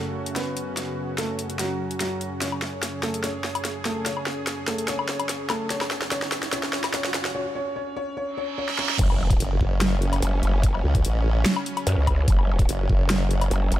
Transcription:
Already playing: F#2 C#3 A3 C#4 F#4 A4
0.26 closed hi-hat
0.36 B3 B4, snare, closed hi-hat
0.57 closed hi-hat
0.77 snare, closed hi-hat
1.18 A3 A4, snare, closed hi-hat
1.39 closed hi-hat
1.50 closed hi-hat
1.59 F#3 F#4, snare, closed hi-hat
1.91 closed hi-hat
2.00 F#3 F#4, snare, closed hi-hat
2.21 closed hi-hat
2.42 C#4 G#4 C#5, snare, closed hi-hat, riser
2.52 low woodblock
2.62 snare
2.83 snare, closed hi-hat
3.03 A3 A4, snare, closed hi-hat
3.14 closed hi-hat
3.24 C#4 C#5, snare, closed hi-hat
3.44 snare
3.55 closed hi-hat, low woodblock
3.65 snare, closed hi-hat
3.85 A3 A4, snare, closed hi-hat
4.06 C#4 C#5, snare, closed hi-hat
4.17 low woodblock
4.26 snare
4.47 snare, closed hi-hat
4.68 A3 A4, snare, closed hi-hat
4.78 closed hi-hat
4.88 C#4 C#5, snare, closed hi-hat
4.99 low woodblock
5.09 snare
5.20 closed hi-hat, low woodblock
5.29 snare, closed hi-hat
5.50 A3 A4, snare, closed hi-hat, low woodblock
5.70 C#4 C#5, snare, closed hi-hat
5.81 snare, low woodblock
5.91 snare
6.02 snare
6.12 C#4 C#5, snare, closed hi-hat
6.22 snare
6.32 snare, closed hi-hat
6.43 snare, closed hi-hat
6.53 C#4 C#5, snare, closed hi-hat
6.63 snare
6.73 snare
6.84 snare, closed hi-hat, low woodblock
6.94 C#4 C#5, snare, closed hi-hat
7.05 snare
7.14 snare, closed hi-hat
7.25 snare
7.35 C#4 C#5
7.55 C#4 C#5
7.76 C#4 C#5
7.96 C#4 C#5
8.17 C#4 C#5, reverse cymbal
8.37 C#4 C#5
8.58 C#4 C#5
8.69 snare
8.79 C#4 C#5, snare
8.89 snare
8.99 F#1 C#3 F#3 C#4, kick, closed hi-hat, crash, impact
9.10 low woodblock
9.30 kick, closed hi-hat
9.40 F#1, closed hi-hat
9.61 F#1, kick
9.81 snare, closed hi-hat
10.02 closed hi-hat
10.13 closed hi-hat, low woodblock
10.22 F#1, closed hi-hat
10.43 F#1, closed hi-hat
10.63 kick, closed hi-hat
10.74 low woodblock
10.84 C#2
10.95 kick, closed hi-hat
11.05 A1, closed hi-hat
11.46 snare, closed hi-hat
11.56 low woodblock
11.66 closed hi-hat
11.77 closed hi-hat, low woodblock
11.87 F#2, closed hi-hat
11.98 C#2
12.07 kick, closed hi-hat, low woodblock
12.28 F#1, kick, closed hi-hat
12.39 low woodblock
12.59 kick, closed hi-hat
12.69 F#1, closed hi-hat
12.89 F#1, kick
13.10 snare, closed hi-hat
13.31 closed hi-hat
13.41 closed hi-hat, low woodblock
13.51 F#1, closed hi-hat
13.72 F#1, closed hi-hat

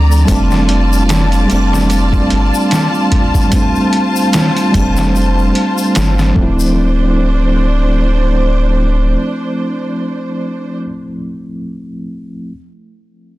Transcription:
Already playing: D2 F3 A3 C4 D4 D5 A#5
0.12 shaker
0.25 G3 A3 F4 D5 A5, kick, closed hi-hat, triangle, shaker
0.29 F1 C4 D4
0.51 snare, shaker
0.69 closed hi-hat
0.93 shaker
1.09 snare, closed hi-hat, shaker
1.32 closed hi-hat, shaker
1.46 G3 A3, closed hi-hat
1.51 F1 C4 D4, triangle
1.73 snare, shaker
1.90 closed hi-hat, shaker
2.13 kick, shaker
2.30 G1, closed hi-hat
2.54 shaker
2.71 snare, closed hi-hat, shaker
2.94 shaker
3.12 kick, closed hi-hat
3.34 kick, shaker
3.49 G3 A3, kick, closed hi-hat, triangle, shaker
3.54 C4 D4 C5
3.75 shaker
3.93 closed hi-hat
4.16 shaker
4.33 snare, closed hi-hat, shaker
4.57 closed hi-hat, shaker
4.72 F1 G3 A3, kick, closed hi-hat, triangle
4.76 C4 D4
4.97 snare, shaker
5.16 shaker
5.38 shaker
5.55 closed hi-hat
5.78 shaker
5.95 G1, snare, closed hi-hat, shaker
6.19 snare, shaker
6.32 F3 A3, kick
6.36 D1 C4 D4 C5
6.43 E4
6.60 shaker

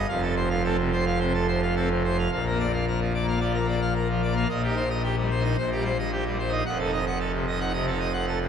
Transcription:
0.08 F1 F2 F5
0.22 A4
0.36 C5
0.50 F5
0.64 C4 A4
0.78 C3
0.92 C5
1.06 F5
1.20 C3 C5
1.34 A4
1.48 C5
1.62 F5
1.76 C4 A4
1.90 C3
2.05 C5
2.18 F5
2.32 A#1 A#2 F5
2.46 A#4
2.50 A#3
2.59 D5
2.73 F5
2.88 A#4
3.00 F3
3.14 D5
3.23 A#3
3.28 F5
3.40 F3 D5
3.54 A#4
3.59 A#3
3.68 D5
3.82 F5
3.95 A#4
4.09 F3
4.22 D5
4.32 A#3
4.36 F5
4.49 A#1 A#2 D#5
4.63 G4
4.68 D#4
4.76 C5
4.90 D#5
5.03 G4
5.17 G3
5.31 C5
5.40 D#4
5.44 D#5
5.58 A#1 A#2 C5
5.72 G4
5.76 G3
5.85 C5
5.99 D#5
6.12 G4
6.26 G3
6.39 C5
6.48 D#4 D#5
6.66 F1 F2 F#5
6.79 A4
6.84 D#4
6.93 D#5
7.06 F#5
7.20 A4
7.34 C3
7.47 D#5
7.56 D#4
7.60 F#5
7.73 C3 D#5
7.87 A4
7.91 D#4
8.00 D#5
8.13 F#5
8.27 A4
8.40 C3

